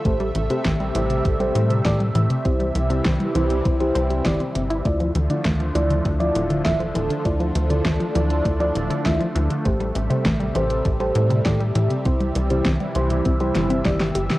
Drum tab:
HH |xxxxxxxxxxxxxxxx|xxxxxxxxxxxxxxxx|xxxxxxxxxxxxxxxx|xxxxxxxxxxxxxxxx|
SD |----o-------o---|----o-------o---|----o-------o---|----o-------o---|
BD |o---o---o---o---|o---o---o---o---|o---o---o---o---|o---o---o---o---|

HH |xxxxxxxxxxxxxxxx|xxxxxxxxxxxxxxxx|
SD |----o-------o---|----o-----o-oo-o|
BD |o---o---o---o---|o---o---o---o---|